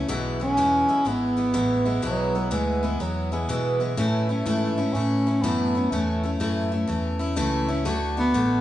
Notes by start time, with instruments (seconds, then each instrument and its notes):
0.08 fingered electric bass B1, steel-string acoustic guitar E2 B2 E3 G#3 B3 E4
0.40 steel-string acoustic guitar E3 G#3 B3 E4, bass clarinet C#4
0.57 fingered electric bass E1, steel-string acoustic guitar E2 B2 E3 G#3 B3 E4
0.89 steel-string acoustic guitar E3 G#3 B3 E4
1.05 fingered electric bass G#1, steel-string acoustic guitar E3 G#3 B3 E4, bass clarinet B3
1.37 steel-string acoustic guitar E3 G#3 B3 E4
1.54 fingered electric bass A1, steel-string acoustic guitar E2 B2 E3 G#3 B3 E4
1.85 steel-string acoustic guitar E3 G#3 B3 E4
2.02 fingered electric bass B1, steel-string acoustic guitar E2 B2 E3 G#3 B3 E4, bass clarinet F#3
2.35 steel-string acoustic guitar E3 G#3 B3 E4
2.51 fingered electric bass D2, steel-string acoustic guitar E2 B2 E3 G#3 B3 E4, bass clarinet G#3
2.83 steel-string acoustic guitar E3 G#3 B3 E4
3.00 fingered electric bass E2, steel-string acoustic guitar E3 G#3 B3 E4, bass clarinet F#3
3.32 bass clarinet E3, steel-string acoustic guitar E3 G#3 B3 E4
3.48 steel-string acoustic guitar E2 B2 E3 G#3 B3 E4, fingered electric bass B2
3.80 steel-string acoustic guitar E3 G#3 B3 E4
3.97 steel-string acoustic guitar A2 E3 A3 C#4 E4, fingered electric bass A2
4.29 bass clarinet A3, steel-string acoustic guitar A3 C#4 E4
4.46 fingered electric bass G#2, steel-string acoustic guitar A2 E3 A3 C#4 E4
4.78 steel-string acoustic guitar A3 C#4 E4
4.93 fingered electric bass A2, steel-string acoustic guitar E3 A3 C#4 E4, bass clarinet C#4
5.27 steel-string acoustic guitar A3 C#4 E4
5.41 fingered electric bass F#2, steel-string acoustic guitar A2 E3 A3 C#4 E4, bass clarinet B3
5.75 steel-string acoustic guitar A3 C#4 E4
5.90 fingered electric bass E2, steel-string acoustic guitar A2 E3 A3 C#4 E4, bass clarinet A3
6.23 steel-string acoustic guitar A3 C#4 E4
6.39 fingered electric bass F#2, steel-string acoustic guitar A2 E3 A3 C#4 E4, bass clarinet A3
6.72 steel-string acoustic guitar A3 C#4 E4
6.88 fingered electric bass E2, steel-string acoustic guitar E3 A3 C#4 E4
7.19 steel-string acoustic guitar A3 C#4 E4
7.36 fingered electric bass C#2, steel-string acoustic guitar A2 E3 A3 C#4 E4
7.68 steel-string acoustic guitar A3 C#4 E4
7.85 fingered electric bass D2, steel-string acoustic guitar D3 A3 D4 F#4
8.17 steel-string acoustic guitar A3 D4 F#4, bass clarinet B3
8.34 fingered electric bass A1, steel-string acoustic guitar D3 A3 D4 F#4